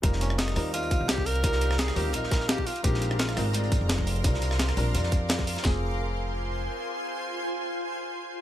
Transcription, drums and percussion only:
0.03 kick, closed hi-hat
0.13 snare
0.21 closed hi-hat
0.30 cross-stick
0.38 snare, closed hi-hat
0.47 cross-stick, snare, closed hi-hat
0.56 cross-stick, closed hi-hat, open hi-hat
0.74 closed hi-hat
0.83 closed hi-hat
0.91 kick, closed hi-hat
1.08 snare, closed hi-hat
1.18 kick
1.26 closed hi-hat, open hi-hat
1.36 closed hi-hat
1.44 kick, closed hi-hat
1.52 snare
1.61 closed hi-hat
1.71 cross-stick, snare
1.78 snare, closed hi-hat
1.88 cross-stick, snare, closed hi-hat
1.96 closed hi-hat, open hi-hat
2.13 closed hi-hat
2.23 snare
2.31 kick, snare, closed hi-hat
2.40 snare
2.49 snare, closed hi-hat
2.58 kick
2.67 closed hi-hat, open hi-hat
2.76 closed hi-hat
2.84 kick, closed hi-hat
2.94 snare
3.02 closed hi-hat
3.11 cross-stick
3.19 snare, closed hi-hat
3.28 cross-stick, snare, closed hi-hat
3.37 cross-stick, closed hi-hat, open hi-hat
3.53 closed hi-hat
3.64 closed hi-hat
3.72 kick, closed hi-hat
3.89 snare, closed hi-hat
3.98 kick
4.07 closed hi-hat, open hi-hat
4.16 closed hi-hat
4.24 kick, closed hi-hat
4.34 snare
4.42 closed hi-hat
4.51 cross-stick, snare
4.59 snare, closed hi-hat
4.68 cross-stick, snare, closed hi-hat
4.77 closed hi-hat, open hi-hat
4.95 closed hi-hat
5.03 snare
5.12 kick, closed hi-hat
5.29 snare, closed hi-hat
5.38 kick, snare
5.47 closed hi-hat, open hi-hat
5.56 snare, closed hi-hat
5.65 kick, snare

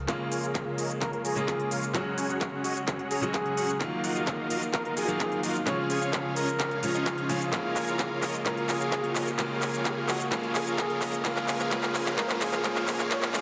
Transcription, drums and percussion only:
0.08 kick, clap, closed hi-hat, shaker
0.32 open hi-hat, shaker
0.43 closed hi-hat, shaker
0.55 kick, clap, closed hi-hat, shaker
0.78 open hi-hat, shaker
0.90 closed hi-hat, shaker
1.02 kick, clap, closed hi-hat, shaker
1.13 closed hi-hat
1.25 open hi-hat, shaker
1.36 closed hi-hat, shaker
1.48 kick, clap, closed hi-hat, shaker
1.60 closed hi-hat
1.71 open hi-hat, shaker
1.83 closed hi-hat, shaker
1.95 kick, clap, closed hi-hat, shaker
2.18 open hi-hat, shaker
2.29 closed hi-hat, shaker
2.41 kick, clap, closed hi-hat, shaker
2.64 open hi-hat, shaker
2.76 closed hi-hat, shaker
2.88 kick, clap, closed hi-hat, shaker
2.99 closed hi-hat
3.11 open hi-hat, shaker
3.23 closed hi-hat, shaker
3.34 kick, clap, closed hi-hat, shaker
3.46 closed hi-hat
3.57 open hi-hat, shaker
3.69 closed hi-hat, shaker
3.81 kick, clap, closed hi-hat, shaker
4.04 open hi-hat, shaker
4.15 closed hi-hat, shaker
4.27 kick, clap, closed hi-hat, shaker
4.50 open hi-hat, shaker
4.62 closed hi-hat, shaker
4.74 kick, clap, closed hi-hat, shaker
4.85 closed hi-hat
4.97 open hi-hat, shaker
5.08 closed hi-hat, shaker
5.20 kick, clap, closed hi-hat, shaker
5.32 closed hi-hat
5.43 open hi-hat, shaker
5.55 closed hi-hat, shaker
5.67 kick, clap, closed hi-hat, shaker
5.90 open hi-hat, shaker
6.02 closed hi-hat, shaker
6.13 kick, clap, closed hi-hat, shaker
6.36 open hi-hat, shaker
6.49 shaker
6.60 kick, clap, closed hi-hat, shaker
6.71 closed hi-hat
6.83 open hi-hat, shaker
6.95 shaker
7.06 kick, clap, closed hi-hat, shaker
7.18 closed hi-hat
7.29 open hi-hat, shaker
7.42 shaker
7.53 kick, clap, closed hi-hat, shaker
7.76 clap, open hi-hat, shaker
7.88 shaker
7.99 kick, clap, closed hi-hat, shaker
8.22 clap, open hi-hat, shaker
8.34 closed hi-hat, shaker
8.46 kick, clap, closed hi-hat, shaker
8.57 closed hi-hat
8.69 clap, open hi-hat, shaker
8.81 closed hi-hat, shaker
8.92 kick, clap, closed hi-hat, shaker
9.04 closed hi-hat
9.15 clap, open hi-hat, shaker
9.27 closed hi-hat, shaker
9.39 kick, clap, closed hi-hat, shaker
9.62 clap, open hi-hat, shaker
9.74 closed hi-hat, shaker
9.85 kick, clap, closed hi-hat, shaker
10.09 clap, open hi-hat, shaker
10.20 closed hi-hat, shaker
10.32 kick, clap, closed hi-hat, shaker
10.43 closed hi-hat
10.55 clap, open hi-hat, shaker
10.67 closed hi-hat, shaker
10.78 kick, clap, closed hi-hat, shaker
10.90 closed hi-hat
11.02 clap, open hi-hat, shaker
11.13 closed hi-hat, shaker
11.25 kick, clap, closed hi-hat, shaker
11.37 clap
11.48 clap, open hi-hat, shaker
11.60 clap, closed hi-hat, shaker
11.71 kick, clap, closed hi-hat, shaker
11.83 clap
11.95 clap, open hi-hat, shaker
12.06 clap, closed hi-hat, shaker
12.18 kick, clap, closed hi-hat, shaker
12.29 clap, closed hi-hat
12.41 clap, open hi-hat, shaker
12.53 clap, closed hi-hat, shaker
12.64 kick, clap, closed hi-hat, shaker
12.76 clap, closed hi-hat
12.88 clap, open hi-hat, shaker
12.99 clap, closed hi-hat, shaker
13.11 kick, clap, closed hi-hat, shaker
13.22 clap, closed hi-hat
13.34 clap, open hi-hat, shaker

